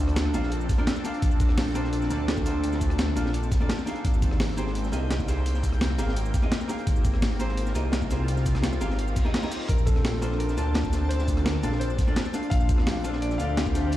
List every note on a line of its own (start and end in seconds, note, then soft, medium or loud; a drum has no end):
0.00 0.33 D2 medium
0.00 0.32 A#3 medium
0.00 4.01 C4 medium
0.00 0.32 D4 medium
0.00 4.01 D4 medium
0.00 0.32 F4 medium
0.00 0.32 A4 medium
0.00 4.01 A4 medium
0.00 0.33 C5 medium
0.08 cross-stick soft
0.08 closed hi-hat soft
0.16 snare loud
0.16 closed hi-hat medium
0.16 closed hi-hat loud
0.26 cross-stick soft
0.34 0.68 A#1 medium
0.34 0.50 A#3 loud
0.34 0.50 D4 medium
0.34 0.50 F4 medium
0.34 0.50 A4 medium
0.34 0.50 F5 loud
0.34 closed hi-hat medium
0.34 shaker medium
0.43 snare medium
0.52 closed hi-hat medium
0.61 shaker soft
0.69 kick loud
0.69 snare soft
0.69 closed hi-hat medium
0.69 shaker medium
0.78 0.88 A#3 loud
0.78 0.88 D4 medium
0.78 0.88 F4 medium
0.78 0.88 A4 medium
0.78 0.88 D5 loud
0.87 snare loud
0.87 closed hi-hat medium
0.87 closed hi-hat loud
0.96 snare medium
0.96 shaker soft
1.04 1.73 A#3 medium
1.04 1.73 D4 medium
1.04 1.73 F4 medium
1.04 1.74 A4 medium
1.04 1.74 F5 loud
1.04 closed hi-hat medium
1.04 shaker medium
1.14 closed hi-hat soft
1.22 1.74 A#1 loud
1.22 kick loud
1.22 closed hi-hat medium
1.31 shaker soft
1.40 kick loud
1.40 closed hi-hat medium
1.40 shaker medium
1.49 cross-stick soft
1.49 snare soft
1.58 snare loud
1.58 closed hi-hat medium
1.58 open hi-hat medium
1.75 2.09 A#1 medium
1.75 2.08 A#3 medium
1.75 2.08 D4 medium
1.75 2.09 F4 medium
1.75 2.09 A4 medium
1.75 2.09 C5 medium
1.75 closed hi-hat medium
1.75 shaker medium
1.84 snare soft
1.93 closed hi-hat medium
2.02 snare soft
2.02 shaker soft
2.10 3.15 D2 medium
2.10 2.43 A#3 loud
2.10 2.44 D4 medium
2.10 2.44 F4 medium
2.10 2.44 A4 medium
2.10 2.44 D5 loud
2.10 closed hi-hat medium
2.10 shaker medium
2.28 snare loud
2.28 closed hi-hat medium
2.37 kick medium
2.37 shaker soft
2.44 3.14 A#3 medium
2.44 3.14 D4 medium
2.44 3.14 F4 medium
2.44 3.15 A4 medium
2.44 3.15 C5 medium
2.44 snare soft
2.44 closed hi-hat medium
2.44 shaker medium
2.64 closed hi-hat medium
2.73 snare soft
2.73 shaker soft
2.81 kick medium
2.81 closed hi-hat medium
2.81 shaker medium
2.90 cross-stick soft
2.90 closed hi-hat soft
2.98 snare loud
2.98 closed hi-hat medium
3.08 cross-stick soft
3.16 3.50 A#1 medium
3.16 3.32 A#3 medium
3.16 3.32 D4 medium
3.16 3.32 F4 medium
3.16 3.32 A4 medium
3.16 3.32 F5 medium
3.16 closed hi-hat medium
3.16 shaker medium
3.26 snare medium
3.34 closed hi-hat medium
3.43 shaker soft
3.51 kick loud
3.51 snare soft
3.51 closed hi-hat medium
3.51 shaker medium
3.60 3.70 A#3 loud
3.60 3.70 D4 medium
3.60 3.70 F4 medium
3.60 3.71 A4 medium
3.60 3.71 D5 loud
3.69 snare loud
3.69 closed hi-hat medium
3.78 snare medium
3.78 shaker soft
3.86 4.55 A#3 medium
3.86 4.55 D#4 medium
3.86 4.56 G4 medium
3.86 4.56 G#4 medium
3.86 4.56 F5 medium
3.86 closed hi-hat medium
3.86 shaker medium
3.95 closed hi-hat soft
4.05 4.56 G#1 loud
4.05 9.65 A#3 medium
4.05 13.97 C4 medium
4.05 6.84 G5 medium
4.05 kick loud
4.05 closed hi-hat loud
4.05 closed hi-hat medium
4.14 shaker soft
4.22 kick loud
4.22 closed hi-hat medium
4.22 shaker medium
4.31 cross-stick soft
4.31 snare soft
4.40 snare loud
4.40 closed hi-hat medium
4.40 open hi-hat medium
4.57 4.91 G#1 medium
4.57 4.90 A#3 medium
4.57 4.91 D#4 medium
4.57 4.91 G4 medium
4.57 4.91 G#4 medium
4.57 4.91 C5 loud
4.57 closed hi-hat medium
4.57 shaker medium
4.67 snare soft
4.75 closed hi-hat medium
4.84 snare soft
4.84 shaker soft
4.92 5.97 C2 medium
4.92 5.26 A#3 loud
4.92 5.26 D#4 medium
4.92 5.26 G4 medium
4.92 5.26 G#4 medium
4.92 5.26 D#5 loud
4.92 closed hi-hat medium
4.92 shaker medium
5.11 snare loud
5.11 closed hi-hat medium
5.20 kick medium
5.20 shaker soft
5.27 5.96 A#3 medium
5.27 5.96 D#4 medium
5.27 5.97 G4 medium
5.27 5.97 G#4 medium
5.27 5.97 C5 medium
5.27 snare soft
5.27 closed hi-hat medium
5.27 shaker medium
5.46 closed hi-hat medium
5.55 snare soft
5.55 shaker soft
5.63 kick medium
5.63 closed hi-hat medium
5.63 shaker medium
5.72 cross-stick soft
5.72 closed hi-hat soft
5.81 snare loud
5.81 closed hi-hat loud
5.90 cross-stick soft
5.98 6.33 G#1 medium
5.98 6.14 A#3 medium
5.98 6.14 D#4 medium
5.98 6.14 G4 medium
5.98 6.15 G#4 medium
5.98 6.15 F5 medium
5.98 closed hi-hat medium
5.98 shaker medium
6.09 snare medium
6.16 closed hi-hat medium
6.26 shaker soft
6.34 kick medium
6.34 snare soft
6.34 closed hi-hat medium
6.34 shaker medium
6.42 6.52 A#3 medium
6.42 6.52 D#4 medium
6.42 6.53 G4 medium
6.42 6.53 G#4 medium
6.42 6.53 D#5 loud
6.52 snare loud
6.52 closed hi-hat medium
6.61 snare medium
6.61 shaker soft
6.68 7.37 A#3 medium
6.68 7.38 D#4 medium
6.68 7.38 G4 medium
6.68 7.38 G#4 medium
6.68 7.38 F5 medium
6.68 closed hi-hat medium
6.68 shaker medium
6.79 closed hi-hat soft
6.87 7.38 G#1 loud
6.87 9.67 F4 medium
6.87 kick loud
6.87 closed hi-hat medium
6.96 shaker soft
7.05 kick loud
7.05 closed hi-hat medium
7.05 shaker medium
7.14 cross-stick soft
7.14 snare soft
7.22 snare loud
7.22 closed hi-hat loud
7.22 open hi-hat medium
7.39 7.74 G#1 medium
7.39 7.73 A#3 medium
7.39 7.73 D#4 medium
7.39 7.73 G4 medium
7.39 7.73 G#4 medium
7.39 7.73 C5 loud
7.39 closed hi-hat medium
7.39 shaker medium
7.49 snare soft
7.57 closed hi-hat loud
7.57 closed hi-hat medium
7.67 snare soft
7.67 shaker soft
7.74 8.80 C2 medium
7.74 8.08 A#3 medium
7.74 8.08 D#4 medium
7.74 8.08 G4 medium
7.74 8.09 G#4 medium
7.74 8.09 D#5 loud
7.74 closed hi-hat medium
7.74 shaker medium
7.92 snare loud
7.92 closed hi-hat medium
7.92 closed hi-hat loud
8.02 kick medium
8.02 shaker soft
8.09 8.78 A#3 medium
8.09 8.79 D#4 medium
8.09 8.79 G4 medium
8.09 8.79 G#4 medium
8.09 8.80 C5 medium
8.09 snare soft
8.09 closed hi-hat medium
8.09 shaker medium
8.28 closed hi-hat medium
8.28 closed hi-hat loud
8.37 snare soft
8.37 shaker soft
8.46 kick medium
8.46 closed hi-hat medium
8.46 shaker medium
8.55 cross-stick soft
8.55 snare soft
8.55 closed hi-hat soft
8.63 snare loud
8.63 closed hi-hat loud
8.63 closed hi-hat medium
8.73 cross-stick soft
8.73 shaker soft
8.81 9.15 G#1 medium
8.81 8.97 A#3 medium
8.81 8.97 D#4 medium
8.81 8.97 G4 medium
8.81 8.97 G#4 medium
8.81 8.97 F5 loud
8.81 closed hi-hat medium
8.81 shaker medium
8.90 snare medium
8.99 closed hi-hat medium
8.99 reverse cymbal medium
9.08 shaker soft
9.16 kick loud
9.16 snare soft
9.16 closed hi-hat medium
9.16 shaker medium
9.25 9.41 A#3 medium
9.25 9.41 D#4 medium
9.25 9.41 G4 medium
9.25 9.41 G#4 medium
9.25 9.41 D#5 loud
9.34 snare loud
9.34 closed hi-hat loud
9.34 closed hi-hat medium
9.42 9.68 A#3 medium
9.42 9.68 D#4 medium
9.42 9.68 G4 medium
9.42 9.68 G#4 medium
9.42 9.69 D#5 medium
9.42 snare medium
9.42 shaker soft
9.52 closed hi-hat medium
9.52 shaker medium
9.68 10.21 A#1 loud
9.68 13.97 D4 medium
9.68 9.87 A#4 medium
9.68 12.49 A5 loud
9.68 kick loud
9.68 closed hi-hat medium
9.68 closed hi-hat loud
9.78 shaker soft
9.86 10.41 A4 medium
9.86 kick loud
9.86 closed hi-hat medium
9.86 shaker medium
9.96 cross-stick soft
9.96 snare soft
10.04 snare loud
10.04 closed hi-hat loud
10.04 open hi-hat medium
10.22 10.56 A#1 medium
10.22 10.55 A#3 medium
10.22 10.55 D4 medium
10.22 10.56 F4 medium
10.22 10.56 A4 medium
10.22 10.56 C5 loud
10.22 closed hi-hat medium
10.22 shaker medium
10.32 snare soft
10.38 11.12 A#4 medium
10.38 closed hi-hat loud
10.38 closed hi-hat medium
10.49 snare soft
10.49 shaker soft
10.57 11.62 D2 medium
10.57 10.91 A#3 loud
10.57 10.91 D4 medium
10.57 10.91 F4 loud
10.57 10.91 D5 loud
10.57 10.91 A5 medium
10.57 closed hi-hat medium
10.57 shaker medium
10.74 snare loud
10.74 closed hi-hat medium
10.74 closed hi-hat loud
10.84 kick medium
10.84 shaker soft
10.92 11.61 A#3 medium
10.92 11.61 D4 medium
10.92 11.61 F4 medium
10.92 11.62 A4 medium
10.92 11.62 C5 medium
10.92 snare soft
10.92 closed hi-hat medium
10.92 shaker medium
11.09 11.43 C5 loud
11.09 closed hi-hat medium
11.09 closed hi-hat loud
11.19 snare soft
11.19 shaker soft
11.28 kick medium
11.28 closed hi-hat medium
11.28 shaker medium
11.37 cross-stick soft
11.37 closed hi-hat soft
11.45 11.78 A#4 loud
11.45 snare loud
11.45 closed hi-hat loud
11.45 closed hi-hat medium
11.55 cross-stick soft
11.63 11.97 A#1 medium
11.63 11.79 A#3 medium
11.63 11.79 D4 medium
11.63 11.79 F4 medium
11.63 11.79 A4 medium
11.63 11.79 F5 loud
11.63 closed hi-hat medium
11.63 shaker medium
11.72 snare medium
11.80 12.53 C5 loud
11.80 closed hi-hat medium
11.90 shaker soft
11.99 kick loud
11.99 snare soft
11.99 closed hi-hat medium
11.99 shaker medium
12.07 12.17 A#3 loud
12.07 12.17 D4 medium
12.07 12.17 F4 medium
12.07 12.17 A4 medium
12.07 12.18 D5 loud
12.16 snare loud
12.16 closed hi-hat medium
12.16 closed hi-hat loud
12.25 snare medium
12.25 shaker soft
12.33 13.02 A#3 medium
12.33 13.02 D4 medium
12.33 13.03 F4 medium
12.33 13.03 A4 medium
12.33 13.03 F5 medium
12.33 closed hi-hat medium
12.33 shaker medium
12.43 closed hi-hat soft
12.50 13.03 A#1 loud
12.50 13.97 G4 loud
12.50 13.17 F5 loud
12.50 kick loud
12.50 closed hi-hat medium
12.60 shaker soft
12.69 kick loud
12.69 closed hi-hat medium
12.69 shaker medium
12.78 cross-stick soft
12.78 snare soft
12.87 snare loud
12.87 closed hi-hat loud
12.87 open hi-hat medium
13.04 13.38 A#1 medium
13.04 13.38 A#3 medium
13.04 13.38 D4 medium
13.04 13.38 F4 medium
13.04 13.38 A4 medium
13.04 13.38 C5 loud
13.04 closed hi-hat medium
13.04 shaker medium
13.13 snare medium
13.21 13.38 D5 loud
13.21 closed hi-hat medium
13.31 snare soft
13.31 shaker soft
13.38 13.97 D2 medium
13.38 13.73 A#3 loud
13.38 13.73 D4 medium
13.38 13.73 F4 medium
13.38 13.73 A4 medium
13.38 13.73 D5 loud
13.38 13.97 F5 loud
13.38 closed hi-hat medium
13.38 shaker medium
13.57 snare loud
13.57 closed hi-hat medium
13.66 kick medium
13.66 shaker soft
13.74 13.97 A#3 medium
13.74 13.97 D4 medium
13.74 13.97 F4 medium
13.74 13.97 A4 medium
13.74 13.97 C5 medium
13.74 snare soft
13.74 closed hi-hat medium
13.74 shaker medium
13.92 closed hi-hat medium